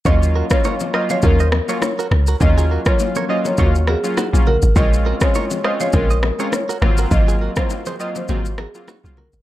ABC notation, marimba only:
X:1
M:4/4
L:1/16
Q:"Swing 16ths" 1/4=102
K:Ebdor
V:1 name="Marimba"
e z2 d z2 e d B3 z d3 z | e z2 d z2 e d G z A z3 B z | e z2 d z2 e d B3 z d3 z | e z2 c z2 e c G z A z3 B z |]